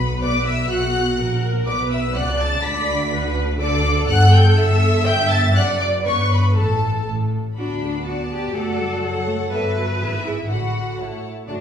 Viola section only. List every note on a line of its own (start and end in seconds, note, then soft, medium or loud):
0.21 0.67 B4 medium
0.70 1.18 F#4 medium
1.19 1.67 A#4 medium
1.67 2.15 B4 medium
2.14 2.62 D5 medium
2.63 3.10 D5 medium
3.12 3.59 B4 medium
3.61 5.04 A4 loud
5.06 5.55 E5 loud
5.55 6.04 D5 loud
6.04 6.54 B4 medium
6.55 7.32 A4 medium
7.58 8.51 B3 medium
7.58 7.66 F#4 medium
7.82 7.90 G4 medium
8.05 8.53 F#4 medium
8.54 8.78 A3 medium
8.54 9.01 F#4 medium
8.78 9.03 G3 medium
9.03 9.27 F#3 medium
9.03 10.00 A4 medium
9.27 9.35 A3 medium
9.52 9.75 G3 medium
9.75 10.00 F#3 medium
10.00 10.48 E3 medium
10.00 10.08 G#4 medium
10.25 10.33 G#4 medium
10.50 10.99 D3 soft
10.50 10.98 F#4 soft
11.00 11.29 A3 soft
11.00 11.29 E4 soft
11.50 11.58 A3 soft
11.50 11.58 F#4 soft